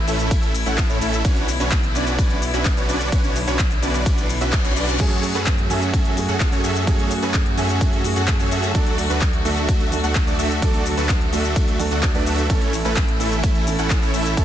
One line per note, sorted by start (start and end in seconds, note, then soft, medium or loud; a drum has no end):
0.00 1.21 E3 medium
0.00 1.21 A3 medium
0.00 4.96 E4 medium
0.08 0.64 A1 loud
0.08 0.52 A3 medium
0.08 0.52 C#4 medium
0.08 0.52 E4 medium
0.08 0.52 A4 medium
0.08 0.52 E5 medium
0.08 open hi-hat medium
0.08 cabasa medium
0.19 closed hi-hat soft
0.19 cabasa soft
0.31 kick loud
0.31 closed hi-hat medium
0.31 ride medium
0.31 cabasa soft
0.43 closed hi-hat soft
0.54 open hi-hat loud
0.54 cabasa medium
0.66 0.87 A1 loud
0.66 0.86 A3 medium
0.66 0.86 C#4 medium
0.66 0.86 E4 medium
0.66 0.86 A4 medium
0.66 0.86 F#5 medium
0.66 closed hi-hat soft
0.66 cabasa soft
0.78 kick loud
0.78 clap loud
0.78 closed hi-hat medium
0.78 ride medium
0.78 cabasa soft
0.90 0.99 A2 loud
0.90 0.98 A3 loud
0.90 0.99 C#4 medium
0.90 0.99 E4 medium
0.90 0.99 A4 medium
0.90 0.99 C#5 loud
0.90 closed hi-hat soft
0.90 cabasa soft
1.01 1.22 A1 loud
1.01 1.22 A3 loud
1.01 1.22 C#4 medium
1.01 1.22 E4 medium
1.01 1.22 A4 medium
1.01 1.22 E5 loud
1.01 open hi-hat medium
1.01 cabasa medium
1.13 closed hi-hat soft
1.13 cabasa soft
1.25 1.58 B1 loud
1.25 4.96 D3 medium
1.25 4.96 B3 medium
1.25 1.49 C#4 medium
1.25 1.49 D4 medium
1.25 1.49 F#4 medium
1.25 1.49 B4 medium
1.25 1.49 C#5 loud
1.25 kick loud
1.25 closed hi-hat medium
1.25 ride medium
1.25 cabasa soft
1.36 closed hi-hat soft
1.48 open hi-hat loud
1.48 cabasa medium
1.60 1.93 B1 loud
1.60 1.75 C#4 loud
1.60 1.75 D4 medium
1.60 1.75 F#4 medium
1.60 1.75 B4 medium
1.60 1.75 C#5 loud
1.60 closed hi-hat soft
1.60 cabasa soft
1.72 kick loud
1.72 clap loud
1.72 closed hi-hat medium
1.72 ride medium
1.72 cabasa soft
1.83 closed hi-hat soft
1.95 2.51 B1 loud
1.95 2.39 C#4 medium
1.95 2.39 D4 medium
1.95 2.39 F#4 medium
1.95 2.39 B4 medium
1.95 2.39 D5 medium
1.95 open hi-hat medium
1.95 cabasa medium
2.07 closed hi-hat soft
2.07 cabasa soft
2.19 kick loud
2.19 closed hi-hat medium
2.19 ride medium
2.19 cabasa soft
2.30 closed hi-hat soft
2.42 open hi-hat loud
2.42 cabasa medium
2.54 2.75 B1 loud
2.54 2.74 C#4 medium
2.54 2.74 D4 medium
2.54 2.74 F#4 medium
2.54 2.74 B4 medium
2.54 2.74 E5 medium
2.54 closed hi-hat soft
2.54 cabasa soft
2.65 kick loud
2.65 clap loud
2.65 closed hi-hat medium
2.65 ride medium
2.65 cabasa soft
2.77 2.86 B1 loud
2.77 2.86 C#4 medium
2.77 2.86 D4 medium
2.77 2.86 F#4 medium
2.77 2.86 B4 medium
2.77 2.86 C#5 loud
2.77 closed hi-hat soft
2.77 cabasa soft
2.89 3.10 B1 loud
2.89 3.09 C#4 loud
2.89 3.09 D4 medium
2.89 3.09 F#4 medium
2.89 3.09 B4 medium
2.89 3.09 D5 loud
2.89 open hi-hat medium
2.89 cabasa medium
3.01 closed hi-hat soft
3.01 cabasa soft
3.12 3.45 B1 loud
3.12 3.36 C#4 medium
3.12 3.36 D4 medium
3.12 3.36 F#4 medium
3.12 3.36 B4 medium
3.12 3.36 C#5 medium
3.12 kick loud
3.12 closed hi-hat medium
3.12 ride medium
3.12 cabasa soft
3.24 closed hi-hat soft
3.24 cabasa soft
3.36 open hi-hat loud
3.36 cabasa medium
3.47 3.80 B1 loud
3.47 3.62 C#4 loud
3.47 3.62 D4 medium
3.47 3.62 F#4 medium
3.47 3.62 B4 medium
3.47 3.62 C#5 loud
3.47 closed hi-hat soft
3.47 cabasa soft
3.59 kick loud
3.59 clap loud
3.59 closed hi-hat medium
3.59 ride medium
3.59 cabasa soft
3.71 closed hi-hat soft
3.71 cabasa soft
3.82 4.39 B1 loud
3.82 4.27 C#4 medium
3.82 4.27 D4 medium
3.82 4.27 F#4 medium
3.82 4.27 B4 medium
3.82 4.27 D5 medium
3.82 open hi-hat medium
3.82 cabasa medium
3.94 closed hi-hat soft
3.94 cabasa soft
4.06 kick loud
4.06 closed hi-hat medium
4.06 ride medium
4.06 reverse cymbal medium
4.06 cabasa soft
4.18 closed hi-hat soft
4.18 cabasa soft
4.29 open hi-hat loud
4.29 cabasa medium
4.41 4.62 B1 loud
4.41 4.61 C#4 medium
4.41 4.61 D4 medium
4.41 4.61 F#4 medium
4.41 4.61 B4 medium
4.41 4.61 E5 medium
4.41 closed hi-hat soft
4.41 cabasa soft
4.53 kick loud
4.53 clap loud
4.53 closed hi-hat medium
4.53 ride medium
4.53 cabasa soft
4.65 4.74 B1 loud
4.65 4.74 C#4 medium
4.65 4.74 D4 medium
4.65 4.74 F#4 medium
4.65 4.74 B4 medium
4.65 4.74 C#5 loud
4.65 closed hi-hat soft
4.65 cabasa soft
4.76 4.97 B1 loud
4.76 4.97 C#4 loud
4.76 4.97 D4 medium
4.76 4.97 F#4 medium
4.76 4.97 B4 medium
4.76 4.97 D5 loud
4.76 open hi-hat medium
4.76 cabasa medium
4.88 closed hi-hat soft
4.88 cabasa soft
4.99 5.33 F#2 loud
4.99 5.67 F#3 loud
4.99 5.67 A3 medium
4.99 14.45 A3 medium
4.99 5.24 C#4 medium
4.99 5.67 C#4 medium
4.99 12.46 F#4 medium
4.99 5.24 F#4 medium
4.99 5.24 G#4 medium
4.99 5.68 G#4 loud
4.99 5.24 A4 medium
4.99 5.24 C#5 loud
4.99 kick loud
4.99 closed hi-hat medium
4.99 crash medium
4.99 ride medium
4.99 cabasa soft
5.11 closed hi-hat soft
5.23 open hi-hat loud
5.23 cabasa medium
5.35 5.68 F#2 loud
5.35 5.50 C#4 loud
5.35 5.50 F#4 medium
5.35 5.50 G#4 medium
5.35 5.50 A4 medium
5.35 5.50 B4 loud
5.35 closed hi-hat soft
5.35 cabasa soft
5.47 kick loud
5.47 clap loud
5.47 closed hi-hat medium
5.47 ride medium
5.47 cabasa soft
5.58 closed hi-hat soft
5.69 6.26 F#2 medium
5.69 6.14 F#3 medium
5.69 6.14 A3 medium
5.69 6.14 C#4 medium
5.69 6.14 F#4 medium
5.69 6.14 G#4 medium
5.69 6.14 A4 medium
5.69 6.14 E5 medium
5.69 6.14 G#5 medium
5.69 open hi-hat loud
5.69 cabasa medium
5.82 closed hi-hat soft
5.82 cabasa soft
5.94 kick loud
5.94 closed hi-hat medium
5.94 ride medium
5.94 cabasa soft
6.05 closed hi-hat soft
6.16 6.84 F#3 medium
6.16 6.84 A3 medium
6.16 6.85 C#4 medium
6.16 6.85 G#4 medium
6.16 open hi-hat loud
6.16 cabasa medium
6.29 6.50 F#2 loud
6.29 6.49 C#4 medium
6.29 6.49 F#4 medium
6.29 6.49 G#4 medium
6.29 6.49 A4 medium
6.29 6.49 F#5 medium
6.29 closed hi-hat soft
6.29 cabasa soft
6.40 kick loud
6.40 clap loud
6.40 closed hi-hat medium
6.40 ride medium
6.40 cabasa soft
6.52 6.61 F#2 loud
6.52 6.61 C#4 medium
6.52 6.61 F#4 medium
6.52 6.61 G#4 medium
6.52 6.61 A4 medium
6.52 6.61 C#5 loud
6.52 closed hi-hat soft
6.52 cabasa soft
6.64 6.85 F#2 loud
6.64 6.84 C#4 medium
6.64 6.84 F#4 medium
6.64 6.84 G#4 medium
6.64 6.84 A4 medium
6.64 6.84 E5 loud
6.64 open hi-hat medium
6.64 cabasa medium
6.76 closed hi-hat soft
6.76 cabasa soft
6.86 7.20 F#2 loud
6.86 7.54 F#3 loud
6.86 7.55 A3 medium
6.86 7.11 C#4 medium
6.86 7.55 C#4 medium
6.86 7.11 F#4 medium
6.86 7.11 G#4 medium
6.86 7.55 G#4 loud
6.86 7.11 A4 medium
6.86 7.11 C#5 loud
6.86 kick loud
6.86 closed hi-hat medium
6.86 ride medium
6.86 cabasa soft
6.99 closed hi-hat soft
7.11 open hi-hat loud
7.11 cabasa medium
7.22 7.55 F#2 loud
7.22 7.37 C#4 loud
7.22 7.37 F#4 medium
7.22 7.37 G#4 medium
7.22 7.37 A4 medium
7.22 7.37 B4 loud
7.22 closed hi-hat soft
7.22 cabasa soft
7.34 kick loud
7.34 clap loud
7.34 closed hi-hat medium
7.34 ride medium
7.34 cabasa soft
7.46 closed hi-hat soft
7.57 8.14 F#2 medium
7.57 8.01 F#3 medium
7.57 8.02 A3 medium
7.57 8.02 C#4 medium
7.57 8.02 F#4 medium
7.57 8.02 G#4 medium
7.57 8.02 A4 medium
7.57 8.02 E5 medium
7.57 8.02 G#5 medium
7.57 open hi-hat loud
7.57 cabasa medium
7.69 closed hi-hat soft
7.69 cabasa soft
7.81 kick loud
7.81 closed hi-hat medium
7.81 ride medium
7.81 cabasa soft
7.93 closed hi-hat soft
8.03 8.71 F#3 medium
8.03 8.72 A3 medium
8.03 8.72 C#4 medium
8.03 8.73 G#4 medium
8.03 open hi-hat loud
8.03 cabasa medium
8.16 8.37 F#2 loud
8.16 8.36 C#4 medium
8.16 8.36 F#4 medium
8.16 8.36 G#4 medium
8.16 8.36 A4 medium
8.16 8.36 F#5 medium
8.16 closed hi-hat soft
8.16 cabasa soft
8.28 kick loud
8.28 clap loud
8.28 closed hi-hat medium
8.28 ride medium
8.28 cabasa soft
8.40 8.49 F#2 loud
8.40 8.49 C#4 medium
8.40 8.49 F#4 medium
8.40 8.49 G#4 medium
8.40 8.49 A4 medium
8.40 8.49 C#5 loud
8.40 closed hi-hat soft
8.40 cabasa soft
8.51 8.72 F#2 loud
8.51 8.72 C#4 loud
8.51 8.72 F#4 medium
8.51 8.72 G#4 medium
8.51 8.72 A4 medium
8.51 8.72 E5 loud
8.51 open hi-hat loud
8.51 cabasa medium
8.63 closed hi-hat soft
8.63 cabasa soft
8.74 9.08 D2 loud
8.74 12.46 D3 medium
8.74 9.42 F#3 loud
8.74 9.42 A3 medium
8.74 8.99 A3 medium
8.74 8.99 D4 medium
8.74 9.42 D4 loud
8.74 8.99 F#4 medium
8.74 8.99 A4 medium
8.74 9.43 A4 loud
8.74 8.99 D5 loud
8.74 kick loud
8.74 closed hi-hat medium
8.74 ride medium
8.74 cabasa soft
8.87 closed hi-hat soft
8.98 open hi-hat loud
8.98 cabasa medium
9.10 9.43 D2 loud
9.10 9.25 A3 loud
9.10 9.25 D4 medium
9.10 9.25 F#4 medium
9.10 9.25 A4 medium
9.10 9.25 B4 loud
9.10 closed hi-hat soft
9.10 cabasa soft
9.22 kick loud
9.22 clap loud
9.22 closed hi-hat medium
9.22 ride medium
9.22 cabasa soft
9.33 closed hi-hat soft
9.45 10.01 D2 loud
9.45 9.89 F#3 medium
9.45 9.89 A3 medium
9.45 9.89 D4 medium
9.45 9.89 F#4 medium
9.45 9.89 A4 medium
9.45 9.90 A4 medium
9.45 9.89 E5 medium
9.45 open hi-hat loud
9.45 cabasa medium
9.57 closed hi-hat soft
9.57 cabasa soft
9.69 kick loud
9.69 closed hi-hat medium
9.69 ride medium
9.69 cabasa soft
9.80 closed hi-hat soft
9.91 10.59 F#3 medium
9.91 10.59 A3 medium
9.91 10.60 D4 medium
9.91 10.60 A4 loud
9.91 open hi-hat loud
9.91 cabasa medium
10.04 10.25 D2 loud
10.04 10.24 A3 medium
10.04 10.24 D4 medium
10.04 10.24 F#4 medium
10.04 10.24 A4 medium
10.04 10.24 F#5 medium
10.04 closed hi-hat soft
10.04 cabasa soft
10.15 kick loud
10.15 clap loud
10.15 closed hi-hat medium
10.15 ride medium
10.15 cabasa soft
10.27 10.36 D2 medium
10.27 10.36 A3 medium
10.27 10.36 D4 medium
10.27 10.36 F#4 medium
10.27 10.36 A4 medium
10.27 10.36 D5 loud
10.27 closed hi-hat soft
10.27 cabasa soft
10.39 10.60 D2 loud
10.39 10.59 A3 medium
10.39 10.59 D4 medium
10.39 10.59 F#4 medium
10.39 10.59 A4 medium
10.39 10.59 E5 loud
10.39 open hi-hat loud
10.39 cabasa medium
10.51 closed hi-hat soft
10.51 cabasa soft
10.61 10.95 D2 loud
10.61 11.29 F#3 loud
10.61 11.30 A3 loud
10.61 10.86 A3 medium
10.61 10.86 D4 medium
10.61 11.30 D4 medium
10.61 10.86 F#4 medium
10.61 10.86 A4 medium
10.61 11.30 A4 loud
10.61 10.86 D5 loud
10.61 kick loud
10.61 closed hi-hat medium
10.61 ride medium
10.61 cabasa soft
10.74 closed hi-hat soft
10.86 open hi-hat loud
10.86 cabasa medium
10.97 11.30 D2 loud
10.97 11.12 A3 loud
10.97 11.12 D4 medium
10.97 11.12 F#4 medium
10.97 11.12 A4 medium
10.97 11.12 B4 loud
10.97 closed hi-hat soft
10.97 cabasa soft
11.09 kick loud
11.09 clap loud
11.09 closed hi-hat medium
11.09 ride medium
11.09 cabasa soft
11.21 closed hi-hat soft
11.32 11.89 D2 loud
11.32 11.76 F#3 medium
11.32 11.77 A3 medium
11.32 11.77 D4 medium
11.32 11.77 F#4 medium
11.32 11.77 A4 medium
11.32 11.77 E5 medium
11.32 open hi-hat medium
11.32 cabasa medium
11.44 closed hi-hat soft
11.44 cabasa soft
11.56 kick loud
11.56 closed hi-hat medium
11.56 ride medium
11.56 cabasa soft
11.68 closed hi-hat soft
11.79 11.91 F#3 loud
11.79 11.91 A3 medium
11.79 11.91 D4 medium
11.79 11.91 A4 loud
11.79 open hi-hat loud
11.79 cabasa medium
11.91 12.12 D2 loud
11.91 12.11 A3 medium
11.91 12.11 D4 medium
11.91 12.11 F#4 medium
11.91 12.11 A4 medium
11.91 12.11 F#5 medium
11.91 closed hi-hat soft
11.91 cabasa soft
12.03 kick loud
12.03 clap loud
12.03 closed hi-hat medium
12.03 ride medium
12.03 cabasa soft
12.14 12.24 D2 loud
12.14 12.47 F#3 medium
12.14 12.47 A3 medium
12.14 12.24 A3 medium
12.14 12.24 D4 medium
12.14 12.47 D4 medium
12.14 12.24 F#4 medium
12.14 12.24 A4 medium
12.14 12.47 B4 loud
12.14 12.24 D5 loud
12.14 closed hi-hat soft
12.14 cabasa soft
12.26 12.47 D2 loud
12.26 12.47 A3 loud
12.26 12.47 D4 medium
12.26 12.47 F#4 medium
12.26 12.47 A4 medium
12.26 12.47 E5 loud
12.26 open hi-hat loud
12.26 cabasa medium
12.38 closed hi-hat soft
12.38 cabasa soft
12.49 12.83 A1 loud
12.49 13.17 E3 loud
12.49 14.45 E3 medium
12.49 13.17 A3 medium
12.49 12.74 A3 medium
12.49 12.74 C#4 medium
12.49 13.17 C#4 medium
12.49 12.74 E4 medium
12.49 14.45 E4 medium
12.49 12.74 A4 medium
12.49 13.18 A4 loud
12.49 12.74 C#5 loud
12.49 kick loud
12.49 closed hi-hat medium
12.49 ride medium
12.49 cabasa soft
12.62 closed hi-hat soft
12.73 open hi-hat loud
12.73 cabasa medium
12.85 13.18 A1 loud
12.85 13.00 A3 loud
12.85 13.00 C#4 medium
12.85 13.00 E4 medium
12.85 13.00 A4 medium
12.85 13.00 B4 loud
12.85 closed hi-hat soft
12.85 cabasa soft
12.97 kick loud
12.97 clap loud
12.97 closed hi-hat medium
12.97 ride medium
12.97 cabasa soft
13.08 closed hi-hat soft
13.20 13.76 A1 loud
13.20 13.64 E3 medium
13.20 13.64 A3 medium
13.20 13.64 C#4 medium
13.20 13.64 E4 medium
13.20 13.64 A4 medium
13.20 13.64 E5 medium
13.20 open hi-hat loud
13.20 cabasa medium
13.32 closed hi-hat soft
13.32 cabasa soft
13.44 kick loud
13.44 closed hi-hat medium
13.44 ride medium
13.44 cabasa soft
13.55 closed hi-hat soft
13.66 14.34 E3 medium
13.66 14.34 A3 medium
13.66 14.35 C#4 medium
13.66 14.35 A4 medium
13.66 open hi-hat loud
13.66 cabasa medium
13.79 14.00 A1 loud
13.79 13.99 A3 medium
13.79 13.99 C#4 medium
13.79 13.99 E4 medium
13.79 13.99 A4 medium
13.79 13.99 F#5 medium
13.79 closed hi-hat soft
13.79 cabasa soft
13.90 kick loud
13.90 clap loud
13.90 closed hi-hat medium
13.90 ride medium
13.90 cabasa soft
14.02 14.12 A1 loud
14.02 14.11 A3 medium
14.02 14.11 C#4 medium
14.02 14.11 E4 medium
14.02 14.11 A4 medium
14.02 14.11 C#5 loud
14.02 closed hi-hat soft
14.02 cabasa soft
14.14 14.35 A1 loud
14.14 14.34 A3 loud
14.14 14.34 C#4 medium
14.14 14.34 E4 medium
14.14 14.34 A4 medium
14.14 14.34 E5 loud
14.14 open hi-hat medium
14.14 cabasa medium
14.26 closed hi-hat soft
14.26 cabasa soft
14.36 14.45 A1 loud
14.36 14.45 E3 loud
14.36 14.45 A3 medium
14.36 14.45 C#4 medium
14.36 14.45 E4 medium
14.36 14.45 A4 medium
14.36 14.45 A4 loud
14.36 14.45 C#5 loud
14.36 kick loud
14.36 closed hi-hat medium
14.36 ride medium
14.36 cabasa soft